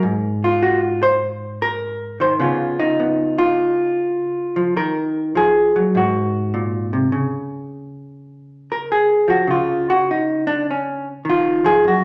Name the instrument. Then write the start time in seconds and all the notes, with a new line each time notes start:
hollow-body jazz guitar
0.03 G#2
0.44 F4
0.63 F#4
1.03 C5
1.62 A#4
2.20 D#3 C5
2.40 C#3 B3 C#4 F4
2.79 D#4
3.00 B3
3.38 F4
4.56 F3
4.76 D#3 A#4
5.35 F3 G#4
5.76 F#3
5.95 G#2 F#4
6.54 A#2
6.93 C3
7.12 C#3
8.72 A#4
8.92 G#4
9.28 F3 F#4
9.47 C#3 F4
9.90 F#4
10.11 D#4
10.47 D4
10.71 C#4
11.25 D#3
11.30 F4
11.65 F3 G#4
11.84 F#2 F#4